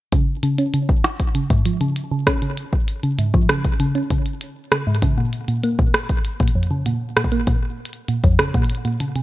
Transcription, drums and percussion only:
0.12 kick, closed hi-hat
0.43 closed hi-hat
0.58 closed hi-hat
0.74 closed hi-hat
0.89 kick
1.04 cross-stick, closed hi-hat
1.20 kick, closed hi-hat
1.35 closed hi-hat
1.50 kick, closed hi-hat
1.66 closed hi-hat
1.81 closed hi-hat
1.96 closed hi-hat
2.27 kick, cross-stick, closed hi-hat
2.42 closed hi-hat
2.57 closed hi-hat
2.73 kick
2.88 closed hi-hat
3.03 closed hi-hat
3.19 closed hi-hat
3.34 kick
3.49 cross-stick, closed hi-hat
3.65 kick, closed hi-hat
3.80 closed hi-hat
3.95 closed hi-hat
4.10 kick, closed hi-hat
4.26 closed hi-hat
4.41 closed hi-hat
4.72 cross-stick, closed hi-hat
4.95 closed hi-hat
5.02 kick, closed hi-hat
5.33 closed hi-hat
5.48 closed hi-hat
5.64 closed hi-hat
5.79 kick
5.94 cross-stick, closed hi-hat
6.09 kick, closed hi-hat
6.25 closed hi-hat
6.40 kick, closed hi-hat
6.48 closed hi-hat
6.63 closed hi-hat
6.86 closed hi-hat
7.17 cross-stick, closed hi-hat
7.24 kick
7.32 closed hi-hat
7.47 kick, closed hi-hat
7.85 closed hi-hat
7.93 closed hi-hat
8.08 closed hi-hat
8.24 kick, closed hi-hat
8.39 cross-stick, closed hi-hat
8.54 kick, closed hi-hat
8.64 closed hi-hat
8.70 closed hi-hat
8.75 closed hi-hat
8.85 closed hi-hat
9.00 closed hi-hat
9.16 closed hi-hat

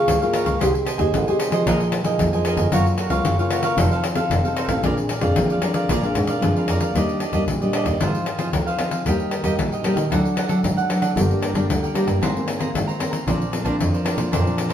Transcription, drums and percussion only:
0.08 pandeiro
0.22 pandeiro
0.34 pandeiro
0.46 pandeiro
0.61 pandeiro
0.75 pandeiro
0.86 pandeiro
0.99 pandeiro
1.14 pandeiro
1.28 pandeiro
1.40 pandeiro
1.52 pandeiro
1.67 pandeiro
1.80 pandeiro
1.92 pandeiro
2.04 pandeiro
2.19 pandeiro
2.33 pandeiro
2.45 pandeiro
2.57 pandeiro
2.72 pandeiro
2.86 pandeiro
2.98 pandeiro
3.10 pandeiro
3.25 pandeiro
3.39 pandeiro
3.50 pandeiro
3.63 pandeiro
3.78 pandeiro
3.92 pandeiro
4.04 pandeiro
4.15 pandeiro
4.31 pandeiro
4.45 pandeiro
4.57 pandeiro
4.69 pandeiro
4.84 pandeiro
4.98 pandeiro
5.09 pandeiro
5.21 pandeiro
5.36 pandeiro
5.50 pandeiro
5.62 pandeiro
5.74 pandeiro
5.89 pandeiro
6.03 pandeiro
6.15 pandeiro
6.27 pandeiro
6.42 pandeiro
6.56 pandeiro
6.68 pandeiro
6.80 pandeiro
6.96 pandeiro
7.09 pandeiro
7.20 pandeiro
7.33 pandeiro
7.48 pandeiro
7.62 pandeiro
7.73 pandeiro
7.86 pandeiro
8.01 pandeiro
8.15 pandeiro
8.26 pandeiro
8.39 pandeiro
8.53 pandeiro
8.68 pandeiro
8.79 pandeiro
8.91 pandeiro
9.06 pandeiro
9.20 pandeiro
9.31 pandeiro
9.44 pandeiro
9.59 pandeiro
9.72 pandeiro
9.84 pandeiro
9.97 pandeiro
10.12 pandeiro
10.25 pandeiro
10.37 pandeiro
10.49 pandeiro
10.64 pandeiro
10.78 pandeiro
10.90 pandeiro
11.02 pandeiro
11.17 pandeiro
11.31 pandeiro
11.43 pandeiro
11.55 pandeiro
11.70 pandeiro
11.84 pandeiro
11.95 pandeiro
12.08 pandeiro
12.23 pandeiro
12.37 pandeiro
12.48 pandeiro
12.60 pandeiro
12.75 pandeiro
12.89 pandeiro
13.00 pandeiro
13.13 pandeiro
13.28 pandeiro
13.42 pandeiro
13.53 pandeiro
13.66 pandeiro
13.81 pandeiro
13.94 pandeiro
14.06 pandeiro
14.18 pandeiro
14.33 pandeiro
14.47 pandeiro
14.58 pandeiro
14.70 pandeiro

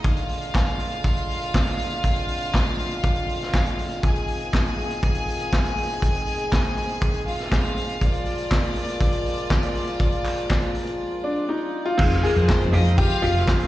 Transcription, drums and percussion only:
0.04 kick, closed hi-hat
0.17 closed hi-hat
0.29 open hi-hat
0.42 closed hi-hat
0.55 kick, snare, clap
0.67 closed hi-hat
0.80 open hi-hat
0.92 closed hi-hat
1.04 kick, closed hi-hat
1.17 closed hi-hat
1.30 open hi-hat
1.42 closed hi-hat
1.54 kick, snare, clap
1.67 closed hi-hat
1.79 open hi-hat
1.91 closed hi-hat
2.04 kick, closed hi-hat
2.16 closed hi-hat
2.28 open hi-hat
2.41 closed hi-hat
2.54 kick, snare, clap
2.66 closed hi-hat
2.79 open hi-hat
2.91 closed hi-hat
3.04 kick, closed hi-hat
3.16 closed hi-hat
3.29 open hi-hat
3.41 snare, closed hi-hat
3.54 kick, snare, clap
3.66 closed hi-hat
3.79 open hi-hat
3.91 closed hi-hat
4.03 kick, closed hi-hat
4.16 closed hi-hat
4.28 open hi-hat
4.40 closed hi-hat
4.53 kick, snare, clap
4.66 closed hi-hat
4.78 open hi-hat
4.90 closed hi-hat
5.03 kick, closed hi-hat
5.15 closed hi-hat
5.28 open hi-hat
5.40 closed hi-hat
5.53 kick, snare, clap
5.65 closed hi-hat
5.78 open hi-hat
5.90 closed hi-hat
6.02 kick, closed hi-hat
6.15 closed hi-hat
6.27 open hi-hat
6.39 closed hi-hat
6.52 kick, snare, clap
6.64 closed hi-hat
6.77 open hi-hat
6.89 closed hi-hat
7.02 kick, closed hi-hat
7.14 closed hi-hat
7.28 open hi-hat
7.39 snare, closed hi-hat
7.52 kick, snare, clap
7.64 closed hi-hat
7.77 open hi-hat
7.89 closed hi-hat
8.01 kick, closed hi-hat
8.13 closed hi-hat
8.26 open hi-hat
8.38 closed hi-hat
8.51 kick, snare, clap
8.63 closed hi-hat
8.76 open hi-hat
8.88 closed hi-hat
9.00 kick, closed hi-hat
9.12 closed hi-hat
9.26 open hi-hat
9.37 closed hi-hat
9.50 kick, snare, clap
9.63 closed hi-hat
9.75 open hi-hat
9.87 closed hi-hat
9.99 kick, closed hi-hat
10.12 closed hi-hat
10.24 clap, open hi-hat
10.37 closed hi-hat
10.50 kick, snare, clap
10.62 closed hi-hat
10.75 open hi-hat
10.87 closed hi-hat
11.99 kick, crash
12.11 closed hi-hat
12.24 open hi-hat
12.36 closed hi-hat
12.49 kick, snare, clap
12.61 closed hi-hat
12.73 open hi-hat
12.86 closed hi-hat
12.98 kick, closed hi-hat
13.10 closed hi-hat
13.23 open hi-hat
13.35 snare, closed hi-hat
13.48 kick, snare, clap
13.60 closed hi-hat

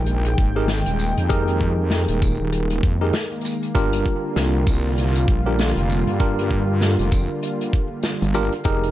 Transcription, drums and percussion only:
0.06 closed hi-hat
0.25 closed hi-hat
0.38 kick
0.68 snare, closed hi-hat
0.86 closed hi-hat
0.99 tambourine
1.18 closed hi-hat
1.30 kick, closed hi-hat
1.48 closed hi-hat
1.61 kick
1.91 snare, closed hi-hat
2.08 closed hi-hat
2.22 kick, tambourine
2.53 closed hi-hat
2.70 closed hi-hat
2.83 kick
3.13 snare, closed hi-hat
3.32 closed hi-hat
3.41 cross-stick, closed hi-hat
3.45 tambourine
3.51 closed hi-hat
3.63 closed hi-hat
3.75 kick, closed hi-hat
3.93 closed hi-hat
4.06 kick
4.36 snare, closed hi-hat
4.67 kick, tambourine
4.85 cross-stick
4.88 cross-stick
4.91 cross-stick
4.95 cross-stick, closed hi-hat
4.98 cross-stick
5.02 cross-stick
5.07 cross-stick
5.11 cross-stick
5.15 closed hi-hat
5.28 kick
5.59 snare, closed hi-hat
5.77 closed hi-hat
5.90 tambourine
6.07 closed hi-hat
6.20 kick, closed hi-hat
6.39 closed hi-hat
6.51 kick
6.81 snare, closed hi-hat
6.99 closed hi-hat
7.12 kick, tambourine
7.43 closed hi-hat
7.61 closed hi-hat
7.73 kick
8.03 snare, closed hi-hat
8.22 closed hi-hat
8.34 cross-stick, tambourine
8.52 closed hi-hat
8.64 kick, closed hi-hat
8.83 closed hi-hat

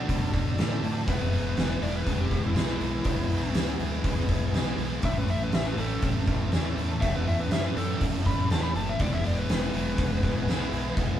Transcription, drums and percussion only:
0.09 kick, open hi-hat
0.34 kick, open hi-hat
0.58 snare, open hi-hat
0.84 open hi-hat
1.08 kick, open hi-hat
1.32 open hi-hat
1.57 snare, open hi-hat
1.83 open hi-hat
2.07 kick, open hi-hat
2.31 kick, open hi-hat
2.56 snare, open hi-hat
2.80 open hi-hat
3.04 kick, open hi-hat
3.30 open hi-hat
3.55 snare, open hi-hat
3.80 open hi-hat
4.04 kick, open hi-hat
4.28 kick, open hi-hat
4.54 snare, open hi-hat
4.78 open hi-hat
5.02 kick, open hi-hat
5.28 open hi-hat
5.52 snare, open hi-hat
5.78 open hi-hat
6.02 kick, open hi-hat
6.27 kick, open hi-hat
6.52 snare, open hi-hat
6.78 open hi-hat
7.02 kick, open hi-hat
7.27 open hi-hat
7.51 snare, open hi-hat
7.76 open hi-hat
8.01 kick, open hi-hat
8.25 kick, open hi-hat
8.50 snare, open hi-hat
8.75 open hi-hat
8.99 kick, open hi-hat
9.24 open hi-hat
9.49 snare, open hi-hat
9.74 open hi-hat
9.98 kick, open hi-hat
10.23 kick, open hi-hat
10.48 snare, open hi-hat
10.73 open hi-hat
10.97 kick, open hi-hat

